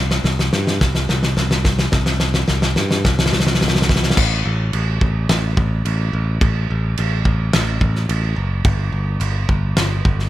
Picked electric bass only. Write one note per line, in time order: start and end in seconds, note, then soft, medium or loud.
0.00 0.18 C2 medium
0.24 0.49 C2 loud
0.53 0.78 G2 medium
0.81 1.06 C2 loud
1.09 1.34 C2 medium
1.37 1.86 C2 loud
1.93 2.43 C2 loud
2.49 2.74 C2 loud
2.77 3.02 G2 medium
3.05 3.30 C2 loud
3.33 3.58 C2 medium
3.63 4.11 C2 medium
4.18 4.42 A1 loud
4.46 4.70 A1 medium
4.74 4.98 A1 medium
5.01 5.25 A1 medium
5.30 5.54 A1 loud
5.57 5.81 A1 medium
5.85 6.10 A1 medium
6.13 6.38 A1 medium
6.41 6.66 A1 loud
6.70 6.94 A1 medium
6.99 7.22 A1 loud
7.26 7.50 A1 medium
7.54 7.78 A1 loud
7.81 8.05 A1 loud
8.09 8.33 A1 loud
8.36 8.61 F#1 medium
8.65 8.89 G1 loud
8.92 9.17 G1 medium
9.20 9.45 G1 loud
9.49 9.73 G1 medium
9.77 10.01 G1 loud
10.05 10.29 G1 loud